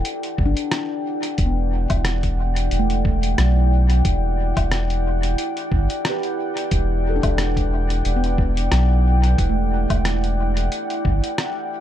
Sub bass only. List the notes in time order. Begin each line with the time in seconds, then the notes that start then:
0.38 G1
1.38 E1
1.90 E1
2.72 E1
3.38 B1
4.05 E1
4.57 E1
5.72 G1
6.72 E1
7.23 E1
8.05 E1
8.72 B1
9.38 E1
9.90 E1
11.05 G1